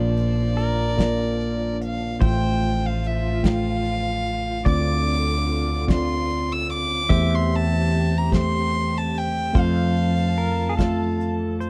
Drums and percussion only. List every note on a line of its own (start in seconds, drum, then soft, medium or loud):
0.17 closed hi-hat soft
0.58 closed hi-hat soft
0.99 kick medium
0.99 snare medium
0.99 closed hi-hat medium
1.40 closed hi-hat soft
1.81 closed hi-hat soft
2.22 kick medium
2.22 closed hi-hat medium
2.62 closed hi-hat soft
3.04 closed hi-hat soft
3.44 kick medium
3.44 snare medium
3.44 closed hi-hat medium
3.85 closed hi-hat soft
4.26 closed hi-hat medium
4.66 kick medium
4.66 closed hi-hat medium
5.07 closed hi-hat soft
5.48 closed hi-hat soft
5.88 kick medium
5.88 snare medium
5.88 closed hi-hat medium
6.30 closed hi-hat soft
6.70 closed hi-hat soft
7.10 kick medium
7.10 closed hi-hat medium
7.52 closed hi-hat soft
7.92 closed hi-hat soft
8.32 kick medium
8.32 snare medium
8.32 closed hi-hat medium
8.73 closed hi-hat soft
9.15 closed hi-hat medium
9.55 kick medium
9.55 closed hi-hat medium
9.96 closed hi-hat medium
10.38 closed hi-hat soft
10.79 kick medium
10.79 snare medium
10.79 closed hi-hat medium
11.21 closed hi-hat soft
11.61 closed hi-hat medium